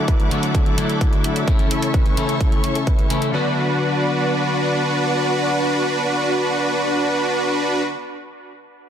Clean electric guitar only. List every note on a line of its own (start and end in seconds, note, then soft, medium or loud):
0.00 0.28 D3 medium
0.00 0.28 F#3 medium
0.00 0.29 A3 medium
0.00 0.29 E4 medium
0.31 0.75 D3 medium
0.31 0.75 F#3 medium
0.31 0.75 A3 medium
0.31 0.75 F#4 loud
0.77 1.44 D3 medium
0.77 1.45 F#3 medium
0.77 1.45 A3 medium
0.77 1.45 E4 medium
1.46 2.14 C#3 medium
1.46 2.14 E3 medium
1.46 2.15 A3 medium
1.46 2.15 E4 medium
2.16 3.07 C#3 medium
2.16 3.07 E3 medium
2.16 3.08 A3 medium
2.16 3.08 E4 medium
3.10 3.30 C#3 medium
3.10 3.31 E3 medium
3.10 3.31 A3 medium
3.10 3.31 E4 medium
3.32 7.94 D3 medium
3.32 7.95 F#3 medium
3.32 7.97 B3 medium
3.32 7.98 F#4 medium